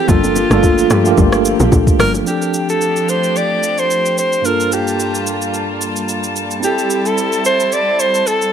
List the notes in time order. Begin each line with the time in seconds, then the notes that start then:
Already playing: C4 E4 G4 G#4 A4 C5
0.07 G1 F3 A#3 D4 F4 A4, kick, low conga, shaker
0.23 low bongo, shaker
0.36 low bongo, shaker
0.50 G1 A3 D4 F4 A4, cross-stick, shaker
0.56 A#3
0.63 kick, high bongo, shaker
0.78 shaker
0.90 G2, cross-stick, shaker
1.04 A3 D4 F4 G4, shaker
1.11 A#3
1.18 G1, kick, low conga, shaker
1.32 cross-stick, shaker
1.45 shaker
1.60 A#1, low bongo, shaker
1.72 A#1, kick, high bongo, shaker
1.87 kick, shaker
1.99 G1 A#4, cross-stick, open hi-hat, high bongo, low conga, shaker
2.14 high bongo, shaker
2.24 F3 A3 C4 D4 G4, shaker
2.29 G4 A4
2.42 shaker
2.54 shaker
2.69 A4, shaker
2.81 shaker
2.96 shaker
3.09 C5, shaker
3.24 shaker
3.36 D5, shaker
3.63 shaker
3.78 C5, shaker
3.91 shaker
4.06 shaker
4.18 C5, shaker
4.33 shaker
4.42 G2 G3 A#3 D4 F4 A#4 A5, shaker
4.47 F4 A4
4.60 shaker
4.72 G4, shaker
4.88 shaker
5.00 shaker
5.15 shaker
5.27 shaker
5.42 shaker
5.54 shaker
5.81 shaker
5.96 shaker
6.09 shaker
6.24 shaker
6.36 shaker
6.51 shaker
6.60 C4 E4, shaker
6.64 G4 A4
6.78 shaker
6.90 shaker
7.06 A4, shaker
7.18 shaker
7.33 shaker
7.45 C5, shaker
7.60 shaker
7.72 D5, shaker
8.00 C5, shaker
8.14 shaker
8.27 A4, shaker
8.42 shaker